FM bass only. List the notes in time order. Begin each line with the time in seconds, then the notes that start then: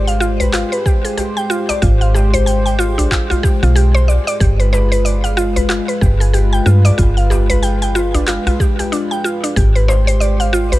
Already playing: G#1
1.82 G#1
3.63 B1
4.41 G1
6.02 G1
6.66 G2
6.99 G1
9.57 G#1